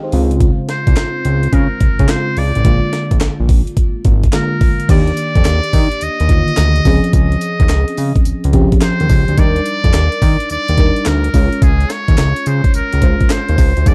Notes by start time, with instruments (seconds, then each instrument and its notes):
Already playing: fm electric piano D#3 G#3 C4 G4 G#4 A#4 D#5 F5 G5
0.04 fm electric piano D#4 C5
0.12 analog synth bass C#2, fm electric piano C#3 G#3 C4 F4, open hi-hat
0.31 closed hi-hat
0.40 kick, closed hi-hat
0.69 muted trumpet C5, snare, closed hi-hat
0.87 analog synth bass C2, kick, closed hi-hat
0.96 snare, clap, closed hi-hat
1.25 analog synth bass C#2, closed hi-hat
1.43 closed hi-hat
1.53 analog synth bass C#3, muted trumpet A#4, kick, closed hi-hat
1.80 analog synth bass C#3, kick, closed hi-hat
1.99 analog synth bass C#3, kick, closed hi-hat
2.09 fm electric piano C#3 G#3 C4 F4, muted trumpet C5, snare, clap, closed hi-hat
2.37 analog synth bass C#2, muted trumpet D5, open hi-hat
2.55 analog synth bass A1, closed hi-hat
2.65 analog synth bass A#1, fm electric piano D3 G#3 A#3 F4, kick, closed hi-hat
2.93 snare, closed hi-hat
3.11 analog synth bass A#1, kick, closed hi-hat
3.21 analog synth bass A#1, snare, clap, closed hi-hat
3.40 analog synth bass A#1
3.49 kick, open hi-hat
3.67 closed hi-hat
3.77 kick, closed hi-hat
4.05 analog synth bass G#1, kick, closed hi-hat
4.23 kick, closed hi-hat
4.33 fm electric piano D3 G#3 A#3 F4, muted trumpet A#4, snare, clap, closed hi-hat
4.61 kick, open hi-hat
4.80 closed hi-hat
4.89 analog synth bass D#2, fm electric piano D#3 A#3 D4 G4, muted trumpet D5, kick, closed hi-hat, crash, tambourine
5.07 closed hi-hat
5.17 closed hi-hat, tambourine
5.35 analog synth bass F2, kick, closed hi-hat
5.45 analog synth bass D#2, snare, clap, closed hi-hat, tambourine
5.63 closed hi-hat
5.73 analog synth bass D#3, kick, open hi-hat, tambourine
5.91 closed hi-hat
6.01 analog synth bass D#2, muted trumpet D#5, closed hi-hat, tambourine
6.20 analog synth bass D#2, closed hi-hat
6.29 fm electric piano D3 D#3 A#3 F4, kick, closed hi-hat
6.48 closed hi-hat
6.57 analog synth bass D2, snare, clap, closed hi-hat, tambourine
6.76 closed hi-hat
6.85 analog synth bass C#2, fm electric piano F3 C4 C#4 G#4, kick, open hi-hat, tambourine
7.04 closed hi-hat
7.13 analog synth bass C#2, muted trumpet D#5, kick, closed hi-hat, tambourine
7.32 closed hi-hat
7.41 closed hi-hat, tambourine
7.60 analog synth bass D#2, kick, closed hi-hat
7.69 analog synth bass C#2, snare, clap, closed hi-hat, tambourine
7.88 closed hi-hat
7.97 analog synth bass C#3, open hi-hat, tambourine
8.16 kick, closed hi-hat
8.25 analog synth bass C#2, closed hi-hat, tambourine
8.44 analog synth bass C#2, closed hi-hat
8.53 fm electric piano F3 C4 C#4 G4, kick, closed hi-hat
8.72 kick, closed hi-hat
8.81 muted trumpet C5, snare, clap, closed hi-hat, tambourine
9.00 analog synth bass D#2, closed hi-hat
9.09 analog synth bass C#2, kick, open hi-hat, tambourine
9.28 analog synth bass D2, closed hi-hat
9.38 analog synth bass D#2, fm electric piano G3 D4 D#4 A#4, muted trumpet D5, kick, closed hi-hat, tambourine
9.56 closed hi-hat
9.65 closed hi-hat, tambourine
9.84 analog synth bass F2, kick, closed hi-hat
9.94 analog synth bass D#2, snare, clap, closed hi-hat, tambourine
10.12 closed hi-hat
10.22 analog synth bass D#3, kick, open hi-hat, tambourine
10.40 closed hi-hat
10.50 analog synth bass D#2, muted trumpet D5, closed hi-hat, tambourine
10.68 analog synth bass D#2, closed hi-hat
10.78 fm electric piano G3 D4 D#4 A#4, kick, closed hi-hat
10.96 closed hi-hat
11.06 analog synth bass D2, muted trumpet A#4, snare, clap, closed hi-hat, tambourine
11.24 closed hi-hat
11.34 analog synth bass C#2, fm electric piano G#3 C#4 F4 C#5, kick, open hi-hat, tambourine
11.53 closed hi-hat
11.62 analog synth bass C#2, muted trumpet G#4, kick, closed hi-hat, tambourine
11.80 closed hi-hat
11.90 muted trumpet C#5, snare, closed hi-hat, tambourine
12.08 analog synth bass D#2, kick, closed hi-hat
12.18 analog synth bass C#2, snare, clap, closed hi-hat, tambourine
12.36 closed hi-hat
12.46 analog synth bass C#3, muted trumpet C5, closed hi-hat, tambourine
12.64 kick, closed hi-hat
12.74 analog synth bass C#2, muted trumpet A#4, closed hi-hat, tambourine
12.93 analog synth bass C#2, closed hi-hat
13.02 fm electric piano G#3 C#4 F4 C5, kick, closed hi-hat
13.21 kick, closed hi-hat
13.30 muted trumpet C5, snare, clap, closed hi-hat, tambourine
13.49 analog synth bass D#2, closed hi-hat
13.58 analog synth bass C#2, kick, open hi-hat, tambourine
13.77 analog synth bass D2, closed hi-hat
13.86 analog synth bass D#2, fm electric piano G3 D4 D#4 G#4, muted trumpet D5, kick, closed hi-hat, tambourine